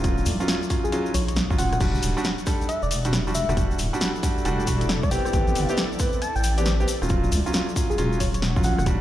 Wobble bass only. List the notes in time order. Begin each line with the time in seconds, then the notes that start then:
0.04 D#1
0.26 C#2
1.14 A#1
1.51 A#1
1.59 D#1
1.81 E1
2.03 D1
2.83 E1
3.49 E1
3.57 E1
3.79 D1
4.45 E1
5.33 A1
5.56 G1
6.36 A1
7.02 D#1
7.10 D#1
7.32 C#2
7.98 D#1
8.56 F#1
8.64 A#1
8.78 D#1
8.86 E1